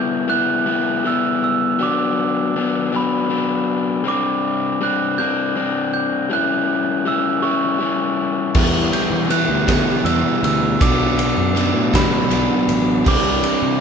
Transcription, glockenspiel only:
Already playing: G6
0.30 F#6
1.07 E6
1.44 E6
1.83 D6
2.96 B5
4.08 D6
4.83 F#6
5.18 G6
5.94 G6
6.33 F#6
7.08 E6
7.42 C#6
8.93 G6
9.31 F#6
10.05 E6
10.45 E6
10.82 D6
11.95 B5
13.08 D6

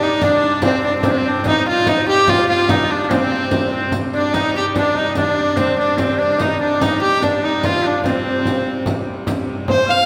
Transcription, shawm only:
Already playing: D4
0.22 D4
0.63 C4
1.06 C4
1.11 D4
1.18 C4
1.47 D#4
1.66 F4
1.86 D#4
2.08 G4
2.29 F4
2.49 F4
2.70 D#4
2.92 D4
3.11 C4
3.73 C4
4.14 D4
4.35 D#4
4.55 G4
4.76 D4
4.96 D#4
5.18 D4
5.37 D4
5.57 C4
5.79 D4
5.98 C4
6.19 D4
6.40 D#4
6.61 D4
6.82 D#4
7.01 G4
7.21 D4
7.44 D#4
7.64 F4
7.85 D4
8.04 C4
9.70 C5
9.87 F5

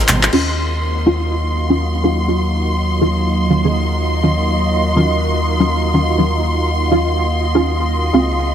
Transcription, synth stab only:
0.33 D#3 F#3 C#4 F4
1.06 D#3 F#3 C#4 F4
1.69 D#3 F#3 C#4 F4
2.03 D#3 F#3 C#4 F4
2.28 D#3 F#3 C#4 F4
3.01 D#3 F#3 C#4 F4
3.50 D#3 F#3 C#4 F4
3.64 D#3 F#3 C#4 G#4
4.23 D#3 F#3 C#4 F4
4.96 D#3 F#3 C#4 F4
5.59 D#3 F#3 C#4 F4
5.94 D#3 F#3 C#4 F4
6.18 D#3 F#3 C#4 F4
6.91 D#3 F#3 C#4 F4
7.55 D#3 F#3 C#4 F4
8.13 C#3 G#3 C4 F4

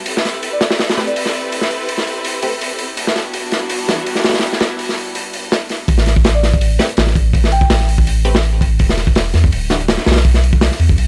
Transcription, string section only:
0.06 C4 E4 G4 A4 B4
2.97 G3 B3 D4 E4 F#4

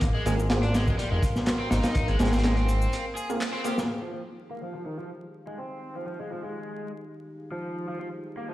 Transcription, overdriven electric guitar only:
0.15 G#3
0.26 G#3
0.63 D4
0.74 G#3
0.87 G#3
0.98 G3
1.11 G#3
1.60 C4
1.71 D#4
2.08 G#3
2.20 G#3
2.32 C4
2.44 G#3
2.57 C4
3.17 G#4
3.54 C4
3.65 G4
4.02 F3
4.14 F3
4.51 A#3
4.62 F3
4.75 F3
4.86 D#3
4.99 F3
5.47 G#3
5.58 C4
5.95 F3
6.06 F3
6.19 G#3
6.31 F3
6.43 G#3
7.52 F3
7.89 F3
8.00 F3
8.37 A#3
8.49 F3

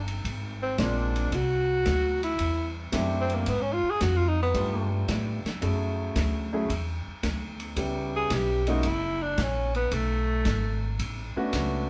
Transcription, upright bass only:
Already playing: G1
0.25 G#1
0.78 A#1
1.32 C2
1.86 D2
2.39 E2
2.93 F#2
3.47 G#2
3.83 muted upright bass stroke
4.01 F2
4.54 G2
5.08 A2
5.45 muted upright bass stroke
5.62 F#2
6.16 D2
6.69 E2
7.07 muted upright bass stroke
7.23 D2
7.77 C#2
8.30 B1
8.84 F#1
9.37 A#1
9.91 B1
10.45 G#1
10.99 A1
11.36 muted upright bass stroke
11.53 C#2

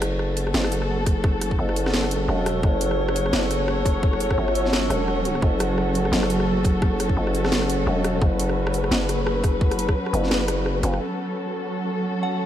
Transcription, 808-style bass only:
Already playing: F#1
0.54 F#1
1.59 F#1
2.28 E1
2.63 F#1
3.33 F#1
4.38 G1
4.90 E1
5.42 F#1
6.12 F#1
7.17 F#1
7.87 E1
8.22 F#1
8.91 F#1
10.13 F#1
10.83 F#1

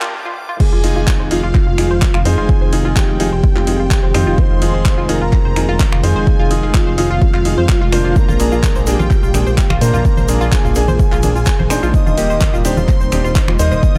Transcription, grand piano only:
Already playing: A#3 D4 G4
0.84 D#4 F4 G#4
1.31 D#4 F4 G#4
1.78 D#4 F4 G#4
2.25 D#4 F4 C5
2.73 D#4 F4 G#4
3.20 D#4 F4 G#4
3.67 D#4 F4 G#4
4.14 D#4 F4 C5
4.62 D#4 F4 G#4
5.09 D#4 F4 G#4
5.56 D#4 F4 G#4
6.03 D#4 F4 C5
6.51 D#4 F4 G#4
6.98 D#4 F4 G#4
7.45 D#4 F4 G#4
7.92 A#3 D4 C5
8.40 A#3 D4 G#4
8.87 A#3 D4 G#4
9.34 A#3 D4 G#4
9.81 A#3 D4 C5
10.29 A#3 D4 G#4
10.76 A#3 D4 G#4
11.23 A#3 D4 G#4
11.70 D4 D#4 C5
12.18 A#3 D#4 G4
12.65 D4 D#4 G4
13.12 D4 D#4 G4
13.59 A#3 D#4 C5

